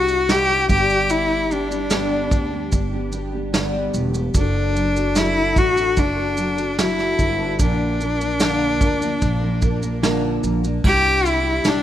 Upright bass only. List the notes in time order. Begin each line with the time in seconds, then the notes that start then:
Already playing: C2
0.69 G1
2.31 D2
2.73 G1
3.94 E1
4.35 F#1
5.56 A1
5.97 F#1
7.19 G1
7.59 A#1
8.81 D2
9.22 A#1
10.44 A#1
10.84 C2
11.65 C2